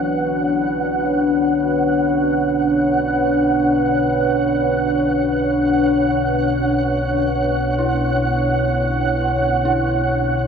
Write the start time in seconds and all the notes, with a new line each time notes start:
Already playing: B1 B2 D4 E4 F#4 B4 C#5 F#5
7.79 E4
9.65 E4